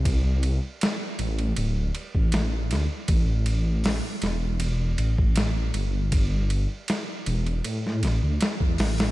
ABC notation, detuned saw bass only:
X:1
M:4/4
L:1/16
Q:1/4=79
K:Am
V:1 name="Detuned saw bass" clef=bass
C,,3 z3 A,,,2 D,,,2 z A,,,3 D,, z | A,,,4- A,,, z E,,,4 A,,, A,,,3 G,,,2- | G,,,3 z3 E,,,2 A,,2 A,,, D,, z E,, A,,,2 |]